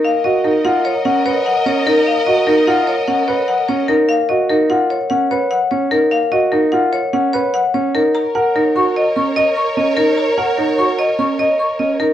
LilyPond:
<<
  \new Staff \with { instrumentName = "Marimba" } { \time 5/4 \key b \lydian \tempo 4 = 148 eis''8 dis''8 ais'8 fis''8 cis''8 fis''8 cis''8 fis''8 cis''8 ais'8 | eis''8 dis''8 ais'8 fis''8 cis''8 fis''8 cis''8 fis''8 cis''8 ais'8 | eis''8 dis''8 ais'8 fis''8 cis''8 fis''8 cis''8 fis''8 cis''8 ais'8 | eis''8 dis''8 ais'8 fis''8 cis''8 fis''8 cis''8 fis''8 cis''8 ais'8 |
ais''8 fis''8 ais'8 cis'''8 dis''8 cis'''8 dis''8 cis'''8 dis''8 ais'8 | ais''8 fis''8 ais'8 cis'''8 dis''8 cis'''8 dis''8 cis'''8 dis''8 ais'8 | }
  \new Staff \with { instrumentName = "String section" } { \time 5/4 \key b \lydian <ais' dis''>1~ <ais' dis''>4~ | <ais' dis''>1~ <ais' dis''>8 r8 | r1 r4 | r1 r4 |
<ais' cis''>1~ <ais' cis''>4~ | <ais' cis''>1~ <ais' cis''>8 r8 | }
  \new Staff \with { instrumentName = "Grand piano" } { \time 5/4 \key b \lydian r8 fis'8 dis'8 eis'8 r8 cis'8 b'8 r8 cis'8 dis'8 | r8 fis'8 dis'8 eis'8 r8 cis'8 b'8 r8 cis'8 dis'8 | r8 fis'8 dis'8 eis'8 r8 cis'8 b'8 r8 cis'8 dis'8 | r8 fis'8 dis'8 eis'8 r8 cis'8 b'8 r8 cis'8 dis'8 |
r8 ais'8 dis'8 fis'8 r8 cis'8 dis''8 r8 cis'8 dis'8 | r8 ais'8 dis'8 fis'8 r8 cis'8 dis''8 r8 cis'8 dis'8 | }
>>